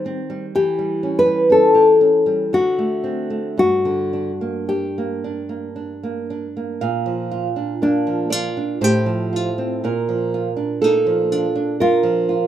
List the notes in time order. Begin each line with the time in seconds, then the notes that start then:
Already playing: D#3 G3
0.06 C4
0.30 G3
0.55 E3 G4
0.79 G3
1.03 C#4
1.19 B4
1.26 G3
1.50 C#4 A4
1.75 G4
2.01 C#4
2.26 G3
2.53 D3 F#4
2.78 A3
3.04 C4
3.30 A3
3.58 G2 F#4
3.85 D3
4.13 D4
4.41 A#3
4.69 D4 G4
4.98 A#3
5.24 D4
5.49 A#3
5.76 D4
6.03 A#3
6.30 D4
6.57 A#3
6.81 A#2 F5
7.06 F3
7.31 F4
7.56 D4
7.82 A#3 D4
8.07 F3
8.30 F4 D5
8.57 D4
8.81 A2 G4 C5
9.06 F3
9.33 F4
9.58 C4
9.84 A#2 A#4
10.09 F3
10.34 F4
10.56 D4
10.82 A#3 D#4 A4
11.06 F3
11.32 D4 F4
11.56 D4
11.80 F4 A#4
12.03 F3
12.29 F4